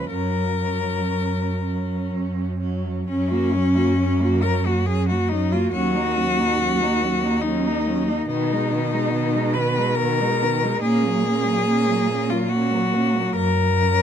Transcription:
0.09 1.00 F#2 medium
0.09 0.60 F#3 soft
0.09 0.61 C#4 soft
0.09 2.07 A#4 medium
0.61 1.60 F#3 soft
0.61 1.60 C#4 soft
1.12 1.99 F#2 medium
1.62 2.58 F#3 soft
1.62 2.59 C#4 soft
2.11 2.97 F#2 medium
2.60 3.07 F#3 soft
2.60 3.07 C#4 soft
3.08 5.69 F#2 medium
3.08 3.33 F#3 medium
3.08 4.44 C#4 loud
3.08 3.31 C#4 medium
3.29 3.55 A#3 medium
3.29 3.55 F#4 medium
3.53 3.77 F#3 medium
3.53 3.78 C#4 medium
3.76 3.97 A#3 medium
3.76 3.98 F#4 medium
3.98 4.22 F#3 medium
3.98 4.23 C#4 medium
4.20 4.45 A#3 medium
4.20 4.44 F#4 medium
4.42 4.67 F#3 medium
4.42 4.67 C#4 medium
4.42 4.68 A#4 medium
4.65 4.87 A#3 medium
4.65 4.87 F#4 medium
4.65 4.88 F#4 medium
4.86 5.12 F#3 medium
4.86 5.12 C#4 medium
4.86 5.08 G#4 medium
5.09 5.33 A#3 medium
5.09 5.30 F#4 medium
5.09 5.32 F#4 medium
5.29 5.55 F#3 medium
5.29 5.53 C#4 medium
5.29 5.54 D#4 medium
5.52 5.73 A#3 medium
5.52 5.71 F4 medium
5.52 5.73 F#4 medium
5.72 8.25 D#2 medium
5.72 5.96 F#3 medium
5.72 5.96 C#4 medium
5.72 7.43 F#4 loud
5.95 6.18 A#3 medium
5.95 6.16 D#4 medium
6.15 6.39 F#3 medium
6.15 6.41 C#4 medium
6.38 6.58 A#3 soft
6.38 6.59 D#4 medium
6.59 6.82 F#3 medium
6.59 6.84 C#4 medium
6.80 7.03 A#3 medium
6.80 7.04 D#4 medium
7.01 7.24 F#3 medium
7.01 7.26 C#4 medium
7.22 7.43 A#3 medium
7.22 7.44 D#4 soft
7.42 7.67 F#3 medium
7.42 7.69 C#4 medium
7.42 8.27 D#4 medium
7.65 7.88 A#3 medium
7.65 7.89 D#4 medium
7.87 8.09 F#3 medium
7.87 8.09 C#4 medium
8.07 8.28 A#3 medium
8.07 8.29 D#4 medium
8.28 10.79 B2 medium
8.28 8.53 D#3 medium
8.28 8.54 B3 medium
8.28 9.55 D#4 loud
8.51 8.73 G#3 medium
8.51 8.73 D#4 medium
8.72 8.94 D#3 medium
8.72 8.95 B3 medium
8.93 9.12 G#3 medium
8.93 9.13 D#4 medium
9.13 9.36 D#3 medium
9.13 9.37 B3 medium
9.34 9.56 G#3 medium
9.34 9.59 D#4 medium
9.54 9.78 D#3 medium
9.54 9.79 B3 medium
9.54 9.97 B4 medium
9.77 9.98 G#3 medium
9.77 9.99 D#4 medium
9.96 10.22 D#3 medium
9.96 10.81 A#4 medium
10.00 10.22 B3 medium
10.20 10.43 G#3 medium
10.20 10.44 D#4 medium
10.41 10.64 D#3 medium
10.41 10.64 B3 medium
10.63 10.82 G#3 medium
10.63 10.83 D#4 medium
10.82 13.32 A#2 medium
10.82 11.06 A#3 medium
10.82 11.09 C#4 medium
10.82 12.31 G#4 loud
11.04 11.26 F#3 medium
11.04 11.29 A#3 medium
11.25 11.48 A#3 medium
11.25 11.49 C#4 medium
11.46 11.67 F#3 medium
11.46 11.68 A#3 medium
11.68 11.89 A#3 medium
11.68 11.92 C#4 medium
11.88 12.09 F#3 medium
11.88 12.13 A#3 medium
12.08 12.31 A#3 medium
12.08 12.33 C#4 medium
12.29 12.50 F#3 medium
12.29 12.52 A#3 medium
12.29 12.51 F4 medium
12.49 12.74 A#3 medium
12.49 13.35 F#4 medium
12.54 12.76 C#4 medium
12.72 12.95 F#3 medium
12.72 12.95 A#3 medium
12.94 13.17 A#3 medium
12.94 13.18 C#4 medium
13.16 13.36 F#3 medium
13.16 13.36 A#3 medium
13.35 14.02 F#2 medium
13.35 14.02 A#4 loud
13.79 14.02 F#3 medium
13.79 14.02 C#4 medium

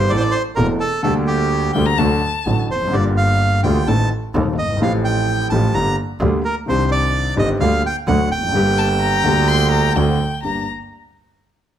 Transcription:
0.00 0.11 C5 medium
0.10 0.31 A1 medium
0.10 0.32 A1 medium
0.10 0.32 A2 medium
0.10 0.31 E3 medium
0.10 0.32 A3 medium
0.10 0.32 C4 medium
0.10 0.32 A4 medium
0.10 0.17 D5 loud
0.17 0.23 C5 medium
0.17 0.34 D5 loud
0.31 0.43 C5 loud
0.56 0.78 E1 loud
0.56 0.78 E1 medium
0.56 0.78 E2 medium
0.56 0.78 E3 medium
0.56 0.78 A3 medium
0.56 0.78 C4 medium
0.56 0.78 A4 medium
0.56 0.67 A#4 medium
0.80 1.02 A4 loud
1.03 1.72 D2 medium
1.03 1.72 D2 loud
1.03 1.72 D3 medium
1.03 1.72 G3 medium
1.03 1.72 A#3 medium
1.03 1.73 G4 medium
1.03 1.14 A4 medium
1.27 1.71 G4 medium
1.74 1.95 D2 medium
1.74 1.95 D3 medium
1.74 1.95 G3 medium
1.74 1.95 A#3 medium
1.74 1.95 G4 medium
1.74 1.87 G5 medium
1.86 2.00 A#5 loud
1.98 2.19 D2 loud
1.98 2.19 D2 medium
1.98 2.19 D3 medium
1.98 2.19 F#3 medium
1.98 2.19 A3 medium
1.98 2.19 F#4 medium
1.98 2.58 A5 medium
2.46 2.66 A1 medium
2.46 2.66 A2 medium
2.46 2.66 D3 medium
2.46 2.66 F#3 medium
2.46 2.66 A3 medium
2.46 2.66 F#4 medium
2.70 2.92 F1 medium
2.70 2.95 C5 medium
2.75 2.81 E2 soft
2.82 2.88 F2 medium
2.87 2.93 F#2 medium
2.91 3.60 G1 medium
2.91 3.61 G1 medium
2.91 3.60 G2 medium
2.91 3.59 D3 medium
2.91 3.60 G3 medium
2.91 3.61 A#3 medium
2.91 3.04 D5 medium
2.96 3.62 F4 medium
3.17 3.61 F5 loud
3.63 3.84 D2 loud
3.63 3.84 D2 medium
3.63 3.84 D3 medium
3.63 3.84 G3 medium
3.63 3.84 A#3 medium
3.63 3.84 F4 medium
3.63 3.88 G5 medium
3.87 4.07 A1 loud
3.87 4.07 A1 medium
3.87 4.07 A2 medium
3.87 4.07 D#3 medium
3.87 4.07 A3 medium
3.87 4.07 C4 medium
3.87 4.08 A4 medium
3.87 4.09 A5 loud
4.35 4.55 D#1 medium
4.35 4.54 D#2 loud
4.35 4.55 D#2 medium
4.35 4.54 D#3 medium
4.35 4.55 A3 medium
4.35 4.55 C4 medium
4.35 4.55 A4 medium
4.58 4.80 G1 medium
4.58 4.80 D#5 medium
4.65 4.70 F#1 medium
4.70 4.76 G1 medium
4.76 4.82 G#1 medium
4.76 5.47 F3 medium
4.81 5.47 A1 medium
4.81 5.48 A1 medium
4.81 5.48 A2 medium
4.81 5.48 A3 medium
4.81 5.48 C4 medium
4.81 5.49 G4 medium
4.81 4.93 F5 medium
5.05 5.48 G5 loud
5.50 5.70 A1 loud
5.50 5.71 A1 medium
5.50 5.71 A2 medium
5.50 5.71 F3 medium
5.50 5.71 A3 medium
5.50 5.71 C4 medium
5.50 5.71 G4 medium
5.50 5.74 A5 medium
5.74 5.94 G1 medium
5.74 5.94 G2 medium
5.74 5.94 D3 medium
5.74 5.94 G3 medium
5.74 5.94 A#3 medium
5.74 5.94 G4 medium
5.74 5.96 A#5 loud
6.20 6.40 D2 loud
6.20 6.41 D2 medium
6.20 6.41 D3 medium
6.20 6.41 G3 medium
6.20 6.41 A#3 medium
6.20 6.41 G4 medium
6.45 6.55 A#4 medium
6.66 7.33 C2 medium
6.66 7.34 C2 medium
6.66 7.34 C3 medium
6.66 7.33 D#3 medium
6.66 7.34 C4 medium
6.66 7.35 D4 medium
6.66 6.90 C5 medium
6.71 7.35 G4 medium
6.92 7.35 D5 loud
7.37 7.57 G1 loud
7.37 7.57 G1 medium
7.37 7.57 G2 medium
7.37 7.57 D#3 medium
7.37 7.57 C4 medium
7.37 7.57 D4 medium
7.37 7.57 G4 medium
7.37 7.49 D#5 loud
7.60 7.80 D2 loud
7.60 7.80 D2 medium
7.60 7.80 D3 medium
7.60 7.80 G3 medium
7.60 7.80 A#3 medium
7.60 7.80 G4 medium
7.60 7.82 F5 loud
7.86 7.96 G5 loud
8.07 8.27 D2 loud
8.07 8.28 D2 medium
8.07 8.28 D3 medium
8.07 8.27 F#3 medium
8.07 8.27 A3 medium
8.07 8.28 F#4 medium
8.07 8.29 F#5 loud
8.30 8.53 F1 medium
8.30 9.93 G5 loud
8.38 8.43 E2 medium
8.43 8.49 F2 medium
8.49 8.55 F#2 medium
8.53 9.21 G1 loud
8.53 9.22 G1 medium
8.53 9.22 G2 medium
8.53 9.21 D3 medium
8.53 9.22 G3 medium
8.53 9.22 A#3 medium
8.57 9.23 G4 medium
8.78 8.88 A5 medium
9.00 9.50 A#5 loud
9.24 9.92 D2 loud
9.24 9.93 D2 medium
9.24 9.93 D3 medium
9.24 9.93 G3 medium
9.24 9.93 A#3 medium
9.28 9.94 G4 medium
9.48 9.71 C6 loud
9.71 9.97 A#5 medium
9.95 10.16 D2 loud
9.95 10.16 D2 medium
9.95 10.16 D3 medium
9.95 10.16 A3 medium
9.95 10.16 C4 medium
9.95 10.16 F#4 medium
9.95 10.43 G5 medium
10.43 10.63 G1 medium
10.43 10.64 G2 medium
10.43 10.64 A#3 soft
10.43 10.64 D4 soft
10.43 10.64 G4 medium
10.43 10.66 A#5 medium

